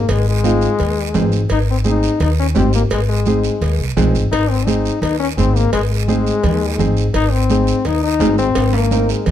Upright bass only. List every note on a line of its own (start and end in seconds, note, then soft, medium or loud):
0.09 0.65 G#1 loud
0.80 1.17 D#2 loud
1.15 1.43 G#1 medium
1.51 2.07 G#1 loud
2.20 2.57 D#2 loud
2.56 2.84 G#1 medium
2.91 3.48 G#1 medium
3.61 3.78 D#2 loud
3.79 3.95 C2 medium
3.97 4.13 A#1 medium
4.14 4.30 G#1 medium
4.31 4.88 G#1 medium
5.02 5.39 D#2 loud
5.37 5.66 G#1 loud
5.73 6.30 G#1 medium
6.44 6.80 D#2 loud
6.78 7.07 G#1 medium
7.14 7.71 G#1 loud
7.85 8.21 D#2 loud
8.19 8.48 G#1 loud
8.56 9.12 G#1 medium
9.27 9.31 D#2 loud